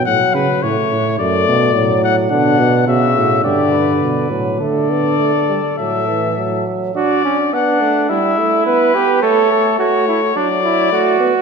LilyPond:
<<
  \new Staff \with { instrumentName = "Trumpet" } { \time 4/4 \key d \major \tempo 4 = 106 fis''8 b'8 cis''4 d''4. fis''8 | fis''4 e''4 d''4. r8 | d''2 e''4. r8 | d''4 fis''4 e''4 b'4 |
cis''4 cis''4 d''2 | }
  \new Staff \with { instrumentName = "Flugelhorn" } { \time 4/4 \key d \major r1 | d'4 fis'4 g'8 b'4. | a'2 a'4. r8 | fis'8 cis'8 d'4 e'4. g'8 |
a'8 a'8 fis'8 e'8 d'8 e'8 fis'4 | }
  \new Staff \with { instrumentName = "Euphonium" } { \time 4/4 \key d \major fis4 a4 a4 fis4 | d8 b,8 cis4 d4. fis8 | a8 b8 a8 g8 fis8 e8 fis4 | d'4 b8 a8 g8 a8 b8 b8 |
a4 a4 fis4 a8 b8 | }
  \new Staff \with { instrumentName = "Bass trombone" } { \clef bass \time 4/4 \key d \major a,8 cis8 a,8 a,8 fis,8 b,8 a,4 | b,4 b,8 a,8 g,4 b,8 a,8 | d4. r8 a,4. r8 | r1 |
r1 | }
>>